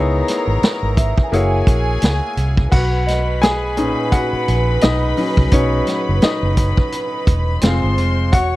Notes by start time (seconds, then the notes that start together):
Already playing: C#2 B3 D#4 E4 G#4 A#4 C#5 A#5
0.28 snare, closed hi-hat
0.47 G#1
0.63 snare, closed hi-hat
0.83 G#1
0.97 E5, kick, closed hi-hat
1.18 kick
1.24 G#5
1.32 F#1 A#3 E4 F#4 G#4 C#5 G#5, closed hi-hat
1.67 A#1, kick, closed hi-hat
2.02 C#2, snare, closed hi-hat
2.37 C2, closed hi-hat
2.57 kick
2.72 B1 F#4 B4 F#5 B5, kick, crash
3.07 D#5, snare, closed hi-hat
3.42 G#4 G#5, snare, closed hi-hat
3.77 A#2 C#4 D#4, closed hi-hat
4.12 F#4 F#5, kick, closed hi-hat
4.33 muted fingered electric bass stroke
4.48 A#1, closed hi-hat
4.81 B1 D#4 D#5, snare, closed hi-hat
5.17 F#3 C#4 D#4, open hi-hat
5.37 C2, kick
5.51 B1 F#3 C#4 D#4 C#5, kick, closed hi-hat
5.87 snare, closed hi-hat
6.09 F#1
6.22 D#4 D#5, snare, closed hi-hat
6.43 F#1
6.57 kick, closed hi-hat
6.77 kick
6.92 closed hi-hat
7.27 E1, kick, closed hi-hat
7.61 F1 G#3 C4 F4 C5 G#5 C6, snare, closed hi-hat
7.84 G1
7.98 F1, closed hi-hat
8.32 E1 F#4 C#5 F#5 C#6, kick, closed hi-hat